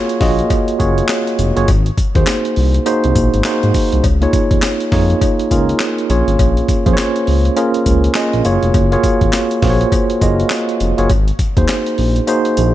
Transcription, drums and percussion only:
0.09 closed hi-hat medium
0.21 kick loud
0.21 snare medium
0.21 open hi-hat medium
0.39 closed hi-hat soft
0.50 kick medium
0.50 closed hi-hat medium
0.50 tambourine medium
0.50 cowbell medium
0.68 closed hi-hat medium
0.80 kick medium
0.80 closed hi-hat medium
0.80 tambourine medium
0.98 closed hi-hat medium
1.08 snare loud
1.08 clap loud
1.08 closed hi-hat medium
1.08 tambourine medium
1.08 cowbell medium
1.27 closed hi-hat soft
1.39 closed hi-hat medium
1.39 tambourine medium
1.57 closed hi-hat medium
1.68 kick loud
1.68 closed hi-hat medium
1.68 tambourine medium
1.68 cowbell medium
1.86 closed hi-hat soft
1.98 kick medium
1.98 closed hi-hat medium
1.98 tambourine medium
2.15 kick loud
2.15 closed hi-hat medium
2.27 snare loud
2.27 clap medium
2.27 closed hi-hat medium
2.27 tambourine medium
2.27 cowbell medium
2.45 closed hi-hat medium
2.56 open hi-hat medium
2.74 closed hi-hat medium
2.86 closed hi-hat medium
2.86 tambourine medium
2.86 cowbell medium
3.04 closed hi-hat medium
3.15 kick medium
3.15 closed hi-hat medium
3.15 tambourine medium
3.34 closed hi-hat medium
3.44 snare loud
3.44 clap loud
3.44 closed hi-hat medium
3.44 tambourine loud
3.44 cowbell medium
3.63 closed hi-hat soft
3.74 kick medium
3.74 open hi-hat medium
3.74 tambourine medium
3.92 closed hi-hat medium
4.04 kick loud
4.04 closed hi-hat medium
4.04 tambourine medium
4.04 cowbell medium
4.22 closed hi-hat soft
4.33 kick medium
4.33 closed hi-hat medium
4.33 tambourine medium
4.51 kick loud
4.51 closed hi-hat medium
4.62 snare loud
4.62 clap loud
4.62 closed hi-hat medium
4.62 tambourine medium
4.62 cowbell medium
4.80 closed hi-hat medium
4.92 kick loud
4.92 snare medium
4.92 open hi-hat medium
5.10 closed hi-hat soft
5.21 kick medium
5.21 closed hi-hat medium
5.21 tambourine medium
5.21 cowbell medium
5.39 closed hi-hat medium
5.51 kick medium
5.51 closed hi-hat medium
5.51 tambourine medium
5.69 closed hi-hat medium
5.80 snare loud
5.80 clap loud
5.80 closed hi-hat medium
5.80 tambourine medium
5.80 cowbell medium
5.98 closed hi-hat soft
6.10 closed hi-hat medium
6.10 tambourine medium
6.28 closed hi-hat medium
6.39 kick loud
6.39 closed hi-hat medium
6.39 tambourine medium
6.39 cowbell medium
6.57 closed hi-hat soft
6.69 kick medium
6.69 closed hi-hat medium
6.69 tambourine medium
6.86 kick loud
6.86 closed hi-hat medium
6.97 snare loud
6.97 clap medium
6.97 closed hi-hat medium
6.97 tambourine loud
6.97 cowbell medium
7.16 closed hi-hat soft
7.27 open hi-hat medium
7.45 closed hi-hat soft
7.56 closed hi-hat medium
7.56 tambourine medium
7.56 cowbell medium
7.74 closed hi-hat medium
7.86 kick medium
7.86 closed hi-hat medium
7.86 tambourine medium
8.04 closed hi-hat medium
8.14 snare loud
8.14 clap loud
8.14 closed hi-hat medium
8.14 tambourine loud
8.14 cowbell medium
8.33 closed hi-hat soft
8.45 closed hi-hat medium
8.45 tambourine medium
8.63 closed hi-hat medium
8.74 kick loud
8.74 closed hi-hat medium
8.74 tambourine medium
8.74 cowbell medium
8.92 closed hi-hat medium
9.03 kick medium
9.03 closed hi-hat medium
9.03 tambourine medium
9.21 kick loud
9.21 closed hi-hat medium
9.33 snare loud
9.33 clap medium
9.33 closed hi-hat medium
9.33 tambourine loud
9.33 cowbell medium
9.51 closed hi-hat medium
9.62 kick loud
9.62 snare medium
9.62 open hi-hat medium
9.81 closed hi-hat medium
9.92 kick medium
9.92 closed hi-hat medium
9.92 tambourine medium
9.92 cowbell medium
10.10 closed hi-hat medium
10.21 kick medium
10.21 closed hi-hat medium
10.21 tambourine medium
10.40 closed hi-hat medium
10.50 snare loud
10.50 clap loud
10.50 closed hi-hat medium
10.50 tambourine medium
10.50 cowbell medium
10.69 closed hi-hat soft
10.80 closed hi-hat medium
10.80 tambourine medium
10.98 closed hi-hat medium
11.10 kick loud
11.10 closed hi-hat medium
11.10 tambourine medium
11.10 cowbell medium
11.28 closed hi-hat soft
11.39 kick medium
11.39 closed hi-hat medium
11.39 tambourine medium
11.57 kick loud
11.57 closed hi-hat medium
11.68 snare loud
11.68 clap loud
11.68 closed hi-hat medium
11.68 tambourine medium
11.68 cowbell medium
11.86 closed hi-hat medium
11.98 open hi-hat medium
12.16 closed hi-hat medium
12.27 closed hi-hat medium
12.27 tambourine medium
12.27 cowbell medium
12.45 closed hi-hat medium
12.57 closed hi-hat medium
12.57 tambourine medium

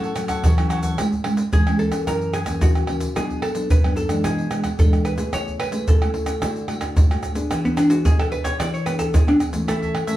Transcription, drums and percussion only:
0.03 pandeiro soft
0.03 shaker soft
0.16 pandeiro medium
0.16 tamborim medium
0.16 shaker medium
0.28 pandeiro medium
0.28 tamborim medium
0.28 shaker medium
0.28 surdo soft
0.44 pandeiro medium
0.44 shaker medium
0.44 surdo medium
0.58 pandeiro soft
0.58 tamborim medium
0.58 shaker soft
0.70 pandeiro medium
0.70 tamborim medium
0.70 shaker medium
0.83 pandeiro medium
0.83 shaker medium
0.83 surdo soft
0.98 pandeiro medium
0.98 tamborim medium
0.98 shaker medium
0.98 surdo medium
1.12 pandeiro soft
1.12 shaker soft
1.12 surdo soft
1.24 pandeiro medium
1.24 tamborim medium
1.37 pandeiro medium
1.37 shaker medium
1.53 pandeiro medium
1.53 shaker medium
1.53 surdo loud
1.67 pandeiro soft
1.67 tamborim medium
1.67 shaker soft
1.79 pandeiro medium
1.92 pandeiro medium
1.92 tamborim medium
1.92 shaker medium
1.92 surdo soft
2.07 pandeiro medium
2.07 tamborim medium
2.07 shaker medium
2.07 surdo medium
2.21 pandeiro soft
2.21 shaker soft
2.33 pandeiro medium
2.33 tamborim medium
2.33 shaker medium
2.46 pandeiro medium
2.46 tamborim medium
2.46 shaker medium
2.46 surdo soft
2.61 pandeiro medium
2.61 shaker medium
2.61 surdo medium
2.75 pandeiro soft
2.75 tamborim medium
2.75 shaker soft
2.87 pandeiro medium
2.87 tamborim medium
3.00 pandeiro medium
3.00 shaker medium
3.00 surdo soft
3.16 pandeiro medium
3.16 tamborim medium
3.16 shaker medium
3.16 surdo medium
3.30 pandeiro soft
3.30 shaker soft
3.30 surdo soft
3.42 pandeiro medium
3.42 tamborim medium
3.55 pandeiro medium
3.55 shaker medium
3.70 pandeiro medium
3.70 shaker medium
3.70 surdo loud
3.84 pandeiro soft
3.84 tamborim medium
3.84 shaker soft
3.96 pandeiro medium
3.96 shaker medium
4.09 pandeiro medium
4.09 tamborim medium
4.09 shaker medium
4.09 surdo soft
4.24 pandeiro medium
4.24 tamborim medium
4.24 shaker medium
4.24 surdo medium
4.38 pandeiro soft
4.38 shaker soft
4.51 pandeiro medium
4.51 tamborim medium
4.51 shaker medium
4.64 pandeiro medium
4.64 tamborim medium
4.64 shaker medium
4.64 surdo soft
4.79 pandeiro medium
4.79 shaker medium
4.79 surdo loud
4.93 pandeiro soft
4.93 tamborim medium
4.93 shaker soft
5.05 pandeiro medium
5.05 tamborim medium
5.05 shaker medium
5.18 pandeiro medium
5.18 shaker medium
5.18 surdo soft
5.33 pandeiro medium
5.33 tamborim medium
5.33 shaker medium
5.33 surdo medium
5.48 pandeiro soft
5.48 shaker soft
5.48 surdo soft
5.60 pandeiro medium
5.60 tamborim medium
5.72 pandeiro medium
5.72 shaker medium
5.88 pandeiro medium
5.88 shaker medium
5.88 surdo loud
6.02 pandeiro soft
6.02 tamborim medium
6.02 shaker soft
6.14 pandeiro medium
6.26 pandeiro medium
6.26 tamborim medium
6.26 shaker medium
6.26 surdo soft
6.42 pandeiro medium
6.42 tamborim medium
6.42 shaker medium
6.42 surdo medium
6.56 pandeiro soft
6.56 shaker soft
6.68 pandeiro medium
6.68 tamborim medium
6.81 pandeiro medium
6.81 tamborim medium
6.81 shaker medium
6.81 surdo soft
6.97 pandeiro medium
6.97 shaker medium
6.97 surdo loud
7.11 pandeiro soft
7.11 tamborim medium
7.11 shaker soft
7.23 pandeiro medium
7.23 tamborim medium
7.23 shaker medium
7.23 surdo soft
7.35 pandeiro medium
7.35 shaker medium
7.35 surdo soft
7.51 pandeiro medium
7.51 tamborim medium
7.51 shaker medium
7.51 surdo medium
7.65 pandeiro soft
7.65 shaker soft
7.65 surdo soft
7.77 pandeiro medium
7.77 tamborim medium
7.77 shaker medium
7.90 pandeiro medium
7.90 shaker medium
8.05 pandeiro medium
8.05 shaker medium
8.05 surdo medium
8.20 pandeiro soft
8.20 tamborim medium
8.20 shaker soft
8.32 pandeiro medium
8.45 pandeiro medium
8.45 tamborim medium
8.45 shaker medium
8.45 surdo soft
8.60 pandeiro medium
8.60 tamborim medium
8.60 shaker medium
8.60 surdo medium
8.74 pandeiro soft
8.74 shaker soft
8.86 pandeiro medium
8.86 tamborim medium
8.86 shaker medium
8.99 pandeiro medium
8.99 tamborim medium
8.99 shaker medium
8.99 surdo soft
9.14 pandeiro medium
9.14 shaker medium
9.14 surdo medium
9.28 pandeiro soft
9.28 tamborim medium
9.28 shaker soft
9.40 pandeiro medium
9.40 tamborim medium
9.40 shaker medium
9.53 pandeiro medium
9.53 shaker medium
9.53 surdo soft
9.68 pandeiro medium
9.68 tamborim medium
9.68 shaker medium
9.68 surdo medium
9.82 pandeiro soft
9.82 shaker soft
9.82 surdo soft
9.95 pandeiro medium
9.95 tamborim medium
10.08 pandeiro medium
10.08 shaker medium

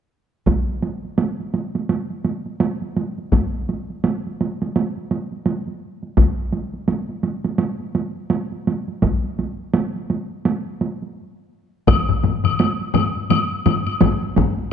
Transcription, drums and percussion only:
0.47 taiko medium
0.47 taiko high soft
0.69 taiko high soft
0.83 taiko high soft
1.05 taiko high soft
1.18 taiko high medium
1.40 taiko high soft
1.54 taiko high soft
1.75 taiko high soft
1.89 taiko high soft
2.10 taiko high soft
2.25 taiko high soft
2.46 taiko high soft
2.60 taiko high medium
2.82 taiko high soft
2.97 taiko high soft
3.18 taiko high soft
3.32 taiko medium
3.32 taiko high medium
3.54 taiko high soft
3.69 taiko high soft
3.90 taiko high soft
4.04 taiko high medium
4.27 taiko high soft
4.41 taiko high soft
4.62 taiko high soft
4.76 taiko high soft
4.97 taiko high soft
5.11 taiko high soft
5.32 taiko high soft
5.46 taiko high soft
5.68 taiko high soft
6.03 taiko high soft
6.17 taiko medium
6.17 taiko high medium
6.53 taiko high soft
6.74 taiko high soft
6.88 taiko high soft
7.09 taiko high soft
7.23 taiko high soft
7.45 taiko high soft
7.58 taiko high medium
7.80 taiko high soft
7.95 taiko high soft
8.30 taiko high medium
8.52 taiko high soft
8.67 taiko high medium
8.88 taiko high soft
9.02 taiko medium
9.02 taiko high soft
9.24 taiko high soft
9.39 taiko high soft
9.74 taiko high medium
9.96 taiko high soft
10.10 taiko high soft
10.45 taiko high medium
10.81 taiko high soft
11.02 taiko high soft
11.87 taiko loud
11.87 taiko low-mid medium
11.87 taiko high medium
11.87 high woodblock soft
12.09 taiko low-mid medium
12.09 taiko high soft
12.23 taiko low-mid medium
12.23 taiko high soft
12.44 taiko low-mid medium
12.44 taiko high soft
12.44 high woodblock soft
12.59 taiko high medium
12.59 high woodblock soft
12.81 taiko high soft
12.94 taiko low-mid medium
12.94 taiko high medium
12.94 high woodblock soft
13.17 taiko high soft
13.30 taiko low-mid medium
13.30 taiko high medium
13.30 high woodblock medium
13.66 taiko low-mid medium
13.66 taiko high medium
13.66 high woodblock soft
13.87 taiko high soft
13.87 high woodblock soft
14.00 taiko medium
14.00 taiko low-mid loud
14.00 taiko high medium
14.00 high woodblock soft
14.22 taiko high soft
14.36 taiko medium
14.36 taiko low-mid medium
14.36 taiko high medium
14.58 taiko high soft

